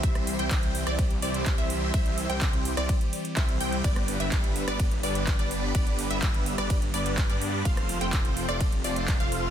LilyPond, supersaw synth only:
\new Staff \with { instrumentName = "Supersaw synth" } { \time 4/4 \key c \major \tempo 4 = 126 <g c' e' c'' e''>8. <g c' e' c'' g''>4 <g c' e' c'' d''>16 r8 <g c' e' c'' d''>8. <g c' e' c'' e''>8. | <g c' e' c'' e''>8. <g c' e' c'' g''>4 <g c' e' c'' d''>16 r4 <g c' e' c'' e''>8 <g c' e' c'' g''>8 | <g b d' b' d''>8. <g b d' b' e''>4 <g b d' b' d''>16 r8 <g b d' b' d''>8. <g b d' b' d''>8. | <g b b' d''>8. <g b d' b' e''>4 <g b d' b' d''>16 r8 <g b d' b' d''>8. <g b d' b' d''>8. |
<a c' f' c'' f''>8. <a c' f' c'' g''>4 <a c' f' c'' d''>16 r8 <a c' f' c'' d''>8. <a c' f' c'' f''>8. | }